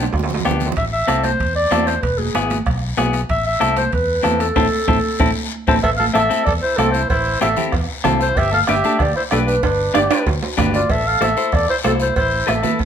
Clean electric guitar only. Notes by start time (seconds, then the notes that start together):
0.45 B3 D4 G4
1.07 C4 E4 A4
1.71 C4 E4 A4
2.35 B3 E4 G#4
2.97 B3 E4 G#4
3.60 C4 E4 A4
4.23 C4 E4 A4
4.56 C4 E4 A4
4.88 C4 E4 A4
5.20 C4 E4 A4
5.68 C4 E4 A4
6.14 C4 E4 A4
6.30 C4 E4 A4
6.78 C4 E4 A4
7.41 C4 E4 G4
7.57 C4 E4 G4
8.04 C4 E4 A4
8.68 D4 G4 B4
8.84 D4 G4 A4
9.32 D4 G4 B4
9.94 D4 G4 D5
10.11 D4 G4 B4
10.57 D4 G4 B4
11.21 E4 A4 C5
11.37 E4 A4 C5
11.84 E4 A4 C5
12.47 E4 A4 B4
12.63 E4 A4 B4